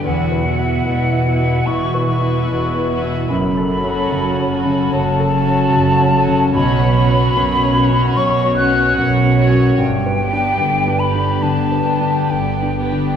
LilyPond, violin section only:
\new Staff \with { instrumentName = "Violin section" } { \time 4/4 \key fis \phrygian \tempo 4 = 74 <fis' b'>8 <fis' b'>4 <fis' b'>4 <fis' b'>4 <fis' b'>8 | r8 <fis' a'>4 <fis' a'>4 <fis' a'>4 <fis' a'>8 | <fis' cis''>8 <fis' cis''>4 <fis' cis''>4 <fis' cis''>4 <fis' cis''>8 | r8 <g' b'>4 <g' b'>4 <g' b'>4 <g' b'>8 | }